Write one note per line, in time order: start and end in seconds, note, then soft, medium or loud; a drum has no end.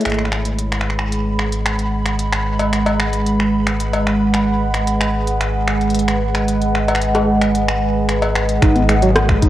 0.00 1.92 C#5 medium
0.00 closed hi-hat soft
0.05 8.60 G#1 medium
0.05 9.49 G#3 medium
0.05 8.63 B5 medium
0.05 finger snap soft
0.05 closed hi-hat medium
0.10 finger snap soft
0.10 closed hi-hat soft
0.14 closed hi-hat soft
0.18 finger snap soft
0.25 9.49 G#4 medium
0.25 finger snap soft
0.30 9.49 B4 medium
0.30 finger snap medium
0.45 closed hi-hat soft
0.59 closed hi-hat medium
0.65 9.49 F#5 medium
0.72 finger snap soft
0.72 closed hi-hat soft
0.81 finger snap soft
0.85 9.49 D#5 medium
0.90 finger snap soft
0.99 finger snap medium
0.99 closed hi-hat soft
1.12 closed hi-hat medium
1.39 finger snap soft
1.52 closed hi-hat soft
1.66 finger snap medium
1.66 closed hi-hat medium
1.79 closed hi-hat soft
2.06 finger snap soft
2.06 closed hi-hat soft
2.19 closed hi-hat medium
2.33 finger snap medium
2.33 closed hi-hat soft
2.59 closed hi-hat soft
2.59 cowbell medium
2.73 finger snap soft
2.73 closed hi-hat medium
2.86 closed hi-hat soft
2.86 cowbell medium
3.00 finger snap medium
3.13 closed hi-hat soft
3.26 closed hi-hat medium
3.40 finger snap soft
3.67 finger snap medium
3.67 closed hi-hat soft
3.80 closed hi-hat medium
3.93 closed hi-hat soft
3.93 cowbell medium
4.07 finger snap soft
4.34 finger snap medium
4.34 closed hi-hat medium
4.74 finger snap soft
4.74 closed hi-hat soft
4.87 closed hi-hat medium
5.01 finger snap medium
5.01 closed hi-hat soft
5.27 closed hi-hat soft
5.41 finger snap soft
5.41 closed hi-hat medium
5.68 finger snap medium
5.81 closed hi-hat soft
5.90 closed hi-hat soft
5.94 closed hi-hat medium
5.99 closed hi-hat soft
6.08 finger snap soft
6.08 closed hi-hat soft
6.35 finger snap medium
6.35 closed hi-hat soft
6.48 closed hi-hat medium
6.61 closed hi-hat soft
6.75 finger snap soft
6.88 closed hi-hat soft
6.88 cowbell medium
6.95 finger snap medium
7.01 closed hi-hat medium
7.15 closed hi-hat soft
7.15 cowbell medium
7.42 finger snap soft
7.42 closed hi-hat soft
7.55 closed hi-hat medium
7.69 finger snap medium
8.09 finger snap soft
8.09 closed hi-hat medium
8.22 closed hi-hat soft
8.22 cowbell medium
8.36 finger snap medium
8.49 closed hi-hat soft
8.62 9.37 G#1 loud
8.62 8.73 D#4 medium
8.62 finger snap medium
8.62 kick loud
8.62 closed hi-hat medium
8.76 8.80 B3 medium
8.76 closed hi-hat soft
8.89 8.94 G#3 medium
8.89 finger snap medium
8.89 closed hi-hat medium
9.02 9.10 F#3 loud
9.02 closed hi-hat medium
9.16 cross-stick loud
9.16 closed hi-hat medium
9.29 finger snap medium
9.29 kick loud
9.43 9.49 G#1 medium
9.43 9.49 D#4 medium
9.43 kick medium
9.43 closed hi-hat loud